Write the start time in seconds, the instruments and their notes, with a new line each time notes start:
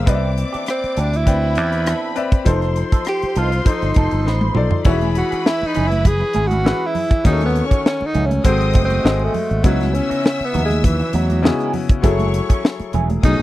0.06 fingered electric bass C2, clean electric guitar E3 B3 D4 G4, grand piano C4 B4 D5 D#5, string section D5 D6, kick, closed hi-hat
0.14 grand piano E5
0.37 muted clean electric guitar stroke, closed hi-hat
0.53 clean electric guitar E3 B3 D4 G4, muted fingered electric bass stroke, closed hi-hat
0.66 tenor saxophone C4, muted clean electric guitar stroke, cross-stick, closed hi-hat
0.84 muted fingered electric bass stroke, closed hi-hat
0.96 fingered electric bass D2, clean electric guitar E3 B3 D4 G4, tenor saxophone D4, closed hi-hat
1.13 tenor saxophone E4, muted clean electric guitar stroke, closed hi-hat
1.26 grand piano C4 B4 D5 G5, string section B4 B5, muted clean electric guitar stroke, kick, closed hi-hat
1.43 muted clean electric guitar stroke
1.55 fingered electric bass E2, clean electric guitar E3 B3 D4 G4, closed hi-hat
1.72 clean electric guitar E3 B3 D4 G4, closed hi-hat
1.86 clean electric guitar E3 B3 D4 A4, cross-stick, closed hi-hat
2.15 grand piano C4 B4 D5 E5, muted clean electric guitar stroke, closed hi-hat
2.32 muted clean electric guitar stroke, kick, closed hi-hat
2.45 fingered electric bass F1, grand piano F3 D#4 A4 C5, clean electric guitar F3 B3 D#4 A4, string section C5 C6, kick, closed hi-hat
2.62 cross-stick, closed hi-hat
2.76 muted clean electric guitar stroke, closed hi-hat
2.92 clean electric guitar F3 B3 D#4 A4, muted fingered electric bass stroke, kick, closed hi-hat
3.05 tenor saxophone G4, muted clean electric guitar stroke, cross-stick, closed hi-hat
3.22 muted fingered electric bass stroke, closed hi-hat
3.36 fingered electric bass C2, clean electric guitar F3 B3 D#4 A4, tenor saxophone F4, closed hi-hat
3.52 muted clean electric guitar stroke, closed hi-hat
3.62 grand piano F3 D#4 A4, tenor saxophone F4, muted clean electric guitar stroke, kick, closed hi-hat
3.67 tenor saxophone D#4, grand piano C5
3.82 fingered electric bass G1, muted clean electric guitar stroke, closed hi-hat
3.94 fingered electric bass F1, clean electric guitar F3 B3 D#4 A4, kick, closed hi-hat
4.11 fingered electric bass G1, clean electric guitar F3 B3 D#4 A4, closed hi-hat
4.25 fingered electric bass A1, clean electric guitar F3 B3 D#4 B4, snare
4.41 high tom
4.55 fingered electric bass B1, grand piano F3 D#4 A4 D5, muted clean electric guitar stroke, mid tom
4.71 muted clean electric guitar stroke, floor tom
4.84 fingered electric bass E1, grand piano E3 E4 F#4 C#5, clean electric guitar G#3 C#4 E4 G#4, string section B4 B5, kick, crash, muted conga
4.92 grand piano G#4
5.01 closed hi-hat, high conga
5.15 tenor saxophone F#4, muted clean electric guitar stroke, closed hi-hat
5.31 clean electric guitar G#3 C#4 E4 G#4, muted fingered electric bass stroke, closed hi-hat
5.45 tenor saxophone E4, muted clean electric guitar stroke, snare, muted conga
5.62 muted fingered electric bass stroke, muted conga
5.67 tenor saxophone D#4
5.74 fingered electric bass F#1, clean electric guitar G#3 C#4 E4 G#4, closed hi-hat, low conga
5.87 tenor saxophone E4, muted clean electric guitar stroke
5.91 closed hi-hat, high conga
6.05 tenor saxophone G#4, muted clean electric guitar stroke, kick, closed hi-hat, low conga
6.20 muted clean electric guitar stroke, muted conga
6.33 fingered electric bass G#1, clean electric guitar G#3 C#4 E4 G#4, closed hi-hat, high conga
6.47 clean electric guitar C#4 E4 G#4, tenor saxophone F#4, closed hi-hat, high conga
6.52 clean electric guitar G#3
6.64 grand piano E3 E4 G#4 B4, clean electric guitar G#3 C#4 E4 B4, snare
6.80 muted conga
6.86 tenor saxophone E4
6.95 muted clean electric guitar stroke, open hi-hat, low conga
7.11 muted clean electric guitar stroke, kick, closed hi-hat
7.24 fingered electric bass D#2, grand piano D#3 C#4 F#4 G#4, clean electric guitar D#3 A3 C#4 F#4, tenor saxophone D#4, string section C#5 C#6, kick, closed hi-hat, muted conga
7.32 grand piano A4
7.41 closed hi-hat, muted conga, high conga
7.46 tenor saxophone B3
7.55 muted clean electric guitar stroke, closed hi-hat
7.66 tenor saxophone C#4
7.71 clean electric guitar D#3 A3 C#4 F#4, muted fingered electric bass stroke, kick, closed hi-hat
7.85 tenor saxophone C#4, muted clean electric guitar stroke, snare
8.01 muted fingered electric bass stroke, muted conga
8.06 tenor saxophone D#4
8.14 fingered electric bass C#2, clean electric guitar D#3 A3 C#4 F#4, closed hi-hat, low conga
8.26 tenor saxophone C#4
8.30 muted clean electric guitar stroke, closed hi-hat, high conga
8.44 fingered electric bass G#1, grand piano G#3 F#4 A4 C5, tenor saxophone C4, string section D#5 D#6, muted clean electric guitar stroke, kick, closed hi-hat, muted conga, low conga
8.60 muted clean electric guitar stroke, closed hi-hat
8.73 fingered electric bass F#1, clean electric guitar D#3 A3 C4 F#4, kick, closed hi-hat, high conga
8.85 tenor saxophone C4
8.90 clean electric guitar D#3 A3 C4 F#4, closed hi-hat, high conga
9.03 fingered electric bass G#1, clean electric guitar D#3 A3 C4 G#4, grand piano G#3 F#4 A4 D#5, snare
9.20 muted conga
9.25 tenor saxophone A3
9.34 muted clean electric guitar stroke, open hi-hat, low conga
9.50 fingered electric bass G#1, muted clean electric guitar stroke, closed hi-hat
9.63 fingered electric bass C#2, grand piano C#3 B3 C#4 E4 F#4, clean electric guitar E3 B3 D#4 F#4, tenor saxophone F#3, string section E5 E6, kick, closed hi-hat, muted conga
9.80 snare, closed hi-hat, high conga
9.93 tenor saxophone C#4, muted clean electric guitar stroke, closed hi-hat
10.09 clean electric guitar E3 B3 D#4 F#4, muted fingered electric bass stroke, closed hi-hat
10.23 muted clean electric guitar stroke, snare
10.41 tenor saxophone B3, muted fingered electric bass stroke, closed hi-hat
10.53 fingered electric bass D#2, clean electric guitar E3 B3 D#4 F#4, closed hi-hat, low conga
10.65 tenor saxophone G#3
10.70 muted clean electric guitar stroke, closed hi-hat, high conga
10.83 tenor saxophone E3, muted clean electric guitar stroke, kick, closed hi-hat, muted conga, low conga
11.00 muted clean electric guitar stroke, closed hi-hat
11.13 fingered electric bass E2, clean electric guitar E3 B3 D#4 F#4, tenor saxophone F#3, closed hi-hat, high conga
11.30 clean electric guitar E3 B3 D#4 F#4, closed hi-hat, high conga
11.42 grand piano C#3 B3 C#4 E4 F#4, clean electric guitar E3 B3 D#4 G#4, tenor saxophone G#3, snare, muted conga
11.59 closed hi-hat, muted conga
11.73 muted clean electric guitar stroke, open hi-hat, low conga
11.89 muted clean electric guitar stroke, kick, closed hi-hat
12.02 fingered electric bass F#1, clean electric guitar E3 A3 C#4 G#4, grand piano F#3 E4 G#4 A4, string section C#5 C#6, kick, closed hi-hat, muted conga
12.19 closed hi-hat, muted conga, high conga
12.33 muted clean electric guitar stroke, closed hi-hat
12.49 clean electric guitar E3 A3 C#4 G#4, muted fingered electric bass stroke, kick, closed hi-hat
12.63 muted clean electric guitar stroke, snare
12.80 muted fingered electric bass stroke, closed hi-hat, muted conga
12.93 fingered electric bass E1, clean electric guitar E3 A3 C#4 G#4, closed hi-hat, low conga
13.10 muted clean electric guitar stroke, closed hi-hat, high conga
13.23 fingered electric bass B1, grand piano B2 A3 C#4 D#4 G#4, tenor saxophone D#4, string section D#5 D#6, muted clean electric guitar stroke, kick, closed hi-hat, low conga